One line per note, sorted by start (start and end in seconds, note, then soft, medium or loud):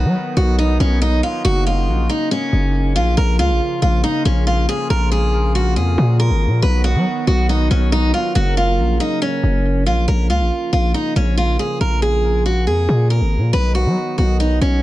0.00 1.43 D#3 medium
0.00 3.14 F#3 medium
0.00 1.43 B3 medium
0.00 3.14 D#4 medium
0.00 0.34 F#4 medium
0.05 0.15 F#3 medium
0.37 0.78 B1 loud
0.37 0.55 F#4 medium
0.59 0.77 D#4 medium
0.80 1.21 B1 loud
0.80 0.99 C#4 medium
1.02 1.20 D#4 medium
1.23 1.42 F4 medium
1.45 1.89 F#1 loud
1.45 6.59 C#3 medium
1.45 6.59 A#3 medium
1.45 1.63 F#4 medium
1.67 2.07 F4 medium
1.88 2.08 A#1 loud
2.09 2.28 D#4 medium
2.31 2.92 C#4 medium
2.53 2.97 F#1 loud
2.96 3.16 A#1 loud
2.96 3.14 F4 medium
3.17 3.41 A#1 loud
3.17 6.59 F3 medium
3.17 6.59 F4 medium
3.17 3.36 A#4 medium
3.39 3.51 C#2 loud
3.39 3.80 F4 medium
3.50 3.60 A#1 loud
3.82 4.03 A#1 loud
3.82 4.01 F4 medium
4.04 4.22 D#4 medium
4.25 4.67 A#1 loud
4.25 4.44 C#4 medium
4.47 4.65 F4 medium
4.69 4.87 G#4 medium
4.90 5.78 A#1 loud
4.90 5.09 A#4 medium
5.12 5.52 G#4 medium
5.55 5.73 F#4 medium
5.76 5.97 F2 loud
5.76 6.17 G#4 medium
5.98 6.32 A#2 loud
6.20 6.60 A#4 medium
6.30 6.48 G#1 loud
6.47 6.62 A#2 loud
6.62 6.97 B1 loud
6.62 8.34 D#3 medium
6.62 10.05 F#3 medium
6.62 8.34 B3 medium
6.62 8.34 F#4 medium
6.62 6.81 B4 medium
6.84 7.25 F#4 medium
6.95 7.05 F#3 medium
7.27 7.69 B1 loud
7.27 7.46 F#4 medium
7.49 7.68 D#4 medium
7.71 8.12 B1 loud
7.71 7.89 C#4 medium
7.92 8.11 D#4 medium
8.14 8.32 F4 medium
8.35 8.80 F#1 loud
8.35 10.06 C#3 medium
8.35 10.06 A#3 medium
8.35 8.54 F#4 loud
8.35 10.06 A#4 medium
8.57 8.98 F4 medium
8.79 8.99 A#1 loud
9.00 9.19 D#4 medium
9.22 9.83 C#4 medium
9.43 9.88 F#1 loud
9.86 10.07 A#1 loud
9.86 10.05 F4 medium
10.08 10.31 A#1 loud
10.08 13.50 C#3 medium
10.08 13.50 F3 medium
10.08 13.50 A#3 medium
10.08 13.50 F4 medium
10.08 10.26 A#4 medium
10.30 10.42 C#2 loud
10.30 10.70 F4 medium
10.40 10.51 A#1 medium
10.73 10.94 A#1 loud
10.73 10.91 F4 medium
10.94 11.13 D#4 medium
11.16 11.57 A#1 loud
11.16 11.35 C#4 medium
11.37 11.56 F4 medium
11.59 11.78 G#4 medium
11.81 12.69 A#1 loud
11.81 11.99 A#4 medium
12.02 12.43 G#4 medium
12.46 12.64 F#4 medium
12.67 12.88 F2 loud
12.67 13.08 G#4 medium
12.89 13.23 A#2 loud
13.10 13.51 A#4 medium
13.21 13.39 G#1 loud
13.37 13.53 A#2 loud
13.53 13.87 B1 loud
13.53 14.83 D#3 medium
13.53 14.83 F#3 medium
13.53 14.83 B3 medium
13.53 14.83 D#4 medium
13.53 13.72 B4 medium
13.75 14.15 F#4 medium
13.86 13.96 F#3 loud
14.18 14.60 B1 loud
14.18 14.37 F#4 medium
14.40 14.58 D#4 medium
14.61 14.83 B1 loud
14.61 14.80 C#4 medium